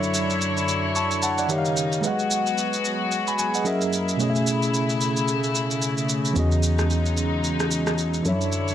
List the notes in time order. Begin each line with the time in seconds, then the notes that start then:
Already playing: F#2 D3 F#3 D4 E4 A4 C#5 E5
0.03 shaker
0.14 shaker
0.30 shaker
0.42 shaker
0.57 shaker
0.68 shaker
0.96 A5 C#6, shaker
1.11 shaker
1.22 F#5 A5, shaker
1.38 D5 F#5, shaker
1.48 C#3 D#3 G3 A#3 D#4 G4 C#5 E5, shaker
1.58 F5
1.65 shaker
1.77 shaker
1.92 shaker
2.01 F#3 G#3 B3 F#4 G#4 B4, shaker
2.05 D#5 F#5
2.19 shaker
2.31 shaker
2.47 shaker
2.58 shaker
2.73 shaker
2.85 shaker
3.12 shaker
3.27 G#5 B5, shaker
3.39 G#5, shaker
3.54 D#5 F#5, shaker
3.65 F#2 F#3 A#3 C#4 E4 G#4 A#4 D#5 E5, shaker
3.81 shaker
3.93 shaker
4.09 shaker
4.17 B2 C#3 A3 C#4, shaker
4.22 G#4 D#5
4.30 E5
4.35 shaker
4.47 shaker
4.63 shaker
4.74 shaker
4.90 shaker
5.01 shaker
5.17 shaker
5.28 shaker
5.44 shaker
5.55 shaker
5.71 shaker
5.82 shaker
5.98 shaker
6.09 shaker
6.25 shaker
6.33 E2 E3 F#3 G#3 B3 C#4 D#4 F#4, shaker
6.38 G#4 D#5
6.52 shaker
6.63 shaker
6.79 cross-stick, shaker
6.90 shaker
7.06 shaker
7.17 shaker
7.44 shaker
7.60 cross-stick, shaker
7.71 shaker
7.87 cross-stick, shaker
7.98 shaker
8.14 shaker
8.22 F#2 D3 E3 F#3 D4 E4 A4 C#5, shaker
8.27 F#3 C#5 E5
8.41 shaker
8.52 shaker
8.68 shaker